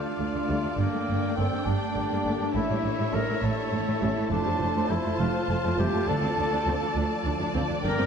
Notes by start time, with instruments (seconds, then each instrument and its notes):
Already playing: ambient pad A3 D4 A4 D5, viola section D4, duduk F4, violin section D5 F5
0.19 cello section D2, double bass section D2, viola section A3
0.34 cello section D2, viola section A3
0.48 cello section D2, double bass section D2, viola section G3, french horn section A3 D4
0.64 cello section D2, viola section A3
0.78 double bass section G1, cello section G2, duduk A#3, viola section A#3, ambient pad A#3 G4, violin section G5
0.93 cello section G2, viola section A3
1.08 double bass section G1, cello section G2, viola section A#3
1.23 cello section G2, viola section A#3
1.37 double bass section G1, cello section G2, viola section A3, french horn section A#3 D4, duduk C4
1.51 cello section G2, viola section A#3
1.66 double bass section G1, cello section G2, viola section A#3, duduk D4
1.95 double bass section G1, cello section G2, viola section A#3
2.10 cello section G2, viola section A#3
2.25 double bass section G1, cello section G2, viola section A3, french horn section A#3 D4
2.40 cello section G2, viola section A#3
2.54 double bass section A1, cello section A2, ambient pad A3 E4 A4 C#5, viola section A3 E4, duduk E4, violin section C#5 E5
2.69 cello section A2, viola section G3
2.84 double bass section A1, cello section A2, viola section A3
2.98 cello section A2, viola section A3
3.13 double bass section A1, cello section A2, viola section G3, french horn section A3 C#4, duduk A#4
3.29 cello section A2, viola section A3
3.43 double bass section A1, cello section A2, viola section A3, duduk A4
3.72 double bass section A1, cello section A2, viola section A3
3.87 cello section A2, viola section A3
4.01 double bass section A1, cello section A2, viola section G3, french horn section A3 C#4
4.17 cello section A2, viola section A3
4.31 double bass section F1, cello section F2, viola section A3 F4, duduk D4, ambient pad F4 C5, violin section C5 A5
4.47 cello section F2, viola section G3
4.60 double bass section F1, cello section F2, viola section A3
4.76 cello section F2, viola section A3
4.90 double bass section F1, cello section F2, viola section G3, french horn section A3 C4, duduk E4
5.05 cello section F2, viola section A3
5.19 double bass section F1, cello section F2, viola section A3, duduk F4
5.49 double bass section F1, cello section F2, viola section A3
5.64 cello section F2, viola section A3
5.77 double bass section F1, cello section F2, viola section G3, french horn section A3 C4, duduk G4
5.93 cello section F2, viola section A3
6.07 double bass section D2, cello section D2, ambient pad F3 D4 D5, viola section D4, duduk A4, violin section D5
6.22 cello section D2, viola section C4
6.37 double bass section D2, cello section D2, viola section D4
6.52 cello section D2, viola section D4
6.66 double bass section D2, cello section D2, french horn section F3 D4, viola section C4
6.82 cello section D2, viola section D4
6.96 double bass section D2, cello section D2, viola section D4
7.25 double bass section D2, cello section D2, viola section D4
7.40 cello section D2, viola section D4
7.55 double bass section D2, cello section D2, french horn section F3 D4, viola section C4
7.70 cello section D2, viola section D4
7.84 double bass section G1, cello section G2, ambient pad A#3 G4, viola section D4 A#4, duduk A#4, violin section G5
7.99 cello section G2, viola section C4